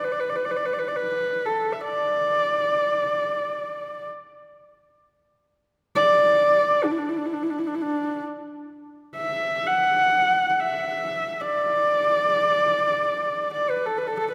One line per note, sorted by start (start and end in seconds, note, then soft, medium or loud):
0.04 0.14 B4 medium
0.12 0.21 D5 medium
0.20 0.31 B4 medium
0.29 0.37 D5 medium
0.36 0.46 B4 medium
0.45 0.52 D5 medium
0.51 0.58 B4 medium
0.56 0.67 D5 medium
0.65 0.74 B4 medium
0.73 0.80 D5 medium
0.79 0.89 B4 medium
0.88 0.97 D5 medium
0.96 1.47 B4 medium
1.45 1.74 A4 medium
1.73 1.82 E5 soft
1.81 4.07 D5 medium
5.96 6.86 D5 medium
6.84 6.93 D4 medium
6.91 7.00 E4 medium
6.98 7.10 D4 medium
7.09 7.19 E4 medium
7.17 7.27 D4 medium
7.26 7.35 E4 medium
7.33 7.44 D4 medium
7.43 7.52 E4 medium
7.50 7.60 D4 medium
7.59 7.68 E4 medium
7.67 7.76 D4 medium
7.75 7.83 E4 medium
7.81 8.22 D4 medium
9.16 9.68 E5 medium
9.66 10.50 F#5 medium
10.50 10.61 F#5 medium
10.60 11.42 E5 medium
11.41 13.53 D5 medium
13.54 13.72 D5 medium
13.70 13.87 B4 medium
13.85 13.99 A4 medium
13.97 14.08 B4 medium
14.07 14.17 A4 medium
14.19 14.29 A4 medium
14.31 14.34 B4 medium